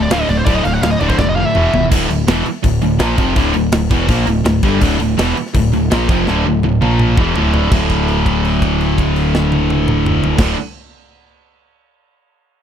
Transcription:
Already playing: D3
0.02 D5
0.10 D1 D2 A2 D3 F5, snare, crash
0.21 D#5
0.28 D1 D2 A2 D3 D5, crash
0.38 C5
0.46 D1 D2 A2 D3 D5, kick, crash
0.54 D#5
0.64 D1 D2 A2 D3 F5, crash
0.73 F#5
0.82 D1 D2 A2 D3 F5, snare, crash
0.92 D#5
0.99 D1 D2 A2 D3 D5, crash
1.10 C5, kick, snare
1.18 F1 D2 A2 D3 D5, kick, snare
1.29 D#5
1.36 D2 A2 D3 F5
1.46 E5
1.55 E1 E2 B2 E3, mid tom
1.73 D#1 E2 B2 E3, floor tom
1.91 D1 D2 A2 D3, kick, crash
2.09 D1 D2 A2, crash
2.27 E1 E2 B2 E3, snare, crash
2.46 muted picked electric bass stroke, muted overdriven electric guitar stroke, muted distorted electric guitar stroke, crash
2.64 D1 D2 A2, kick, crash
2.81 D1 D2 A2, crash
2.99 A#1 A#2 F3 A#3, snare, crash
3.17 F1 F2 C3 F3, kick, crash
3.35 D1 D2 A2 D3, kick, crash
3.54 D1 D2 A2, crash
3.72 D1 D2 A2, snare, crash
3.89 E1 E2 B2 E3, kick, crash
4.07 A#1 A#2 F3 A#3, kick, crash
4.25 D1 D2 A2, crash
4.43 D1 D2 A2, snare, crash
4.63 G1 G2 D3 G3, kick, crash
4.81 D1 D2 A2 D3, kick, crash
4.99 D1 D2 A2, crash
5.17 E1 E2 B2 E3, snare, crash
5.35 muted overdriven electric guitar stroke, muted picked electric bass stroke, muted distorted electric guitar stroke, crash
5.46 snare
5.54 D1 D2 A2, kick, crash
5.72 D1 D2 A2, crash
5.90 A#1 A#2 F3 A#3, snare, crash
6.09 F1 F2 C3 F3, kick, crash
6.27 D1 D2 A2 D3, snare
6.46 D1 D2 A2
6.63 D1 D2 A2, high tom
6.81 A#1 A#2 F3 A#3, high tom
6.99 mid tom
7.17 E1 E2 B2 E3, kick
7.36 D1 D2 A2 D3, floor tom
7.54 floor tom
7.70 D1 D2 A2, kick, crash
7.74 D3
7.90 kick, crash
8.08 crash
8.26 kick, crash
8.45 crash
8.62 kick, crash
8.81 crash
8.98 kick, crash
9.16 crash
9.35 snare
9.52 high tom
9.70 high tom
9.88 mid tom
10.06 mid tom
10.24 floor tom
10.37 D1 D2 A2 D3, kick, snare, crash

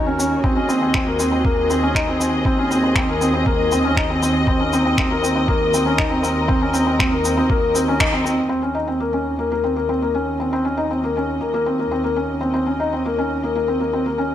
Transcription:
Already playing: D#2 C#4 F#4 A#4 C#5
0.06 C#4
0.19 C#4, shaker
0.44 D#2 C4 G#4 D#5, kick
0.56 C#4
0.69 C4, shaker
0.81 C4
0.94 C4, finger snap, kick
1.07 A#3
1.19 C4, shaker
1.32 C4
1.45 A#3, kick
1.70 C4, shaker
1.83 C#4
1.95 D#4, finger snap, kick
2.08 C4
2.20 C4, shaker
2.45 C4, kick
2.58 C#4
2.71 C4, shaker
2.84 C4
2.96 C4, finger snap, kick
3.09 A#3
3.21 C4, shaker
3.34 C4
3.46 A#3, kick
3.72 C4, shaker
3.85 C#4
3.97 D#4, finger snap, kick
4.10 C4
4.22 C4, shaker
4.47 C4 A#4, kick
4.60 C#4
4.73 C4, shaker
4.85 C4
4.98 C4, finger snap, kick
5.11 A#3
5.23 C4, shaker
5.36 C4
5.48 A#3, kick
5.74 C4, shaker
5.86 C#4
5.98 D#4, finger snap, kick
6.10 C4
6.23 C4, shaker
6.48 C4, kick
6.62 C#4
6.74 C4, shaker
6.86 C4
6.99 C4, finger snap, kick
7.12 A#3
7.25 C4, shaker
7.37 C4
7.50 A#3, kick
7.75 C4, shaker
7.88 C#4
8.00 D#4, finger snap, kick
8.12 C4
8.24 C4, shaker
8.49 D#2 C4 C#4 F#4 A#4 D#5
8.62 C#4
8.75 D#4
8.88 C4
9.00 A#3
9.13 C#4
9.39 A#3
9.52 A#3
9.64 C4
9.76 A#3
9.89 C4
10.02 A#3
10.15 C#4
10.40 C4
10.53 C4
10.65 C#4
10.77 D#4
10.91 C4
11.04 A#3
11.17 C#4
11.41 A#3
11.54 A#3
11.66 C4
11.79 A#3
11.91 C4
12.04 A#3
12.16 C#4
12.41 C4
12.54 C4
12.66 C#4
12.80 D#4
12.93 C4
13.06 A#3
13.19 C#4
13.43 A#3
13.55 A#3
13.68 C4
13.80 A#3
13.93 C4
14.06 A#3
14.18 C#4

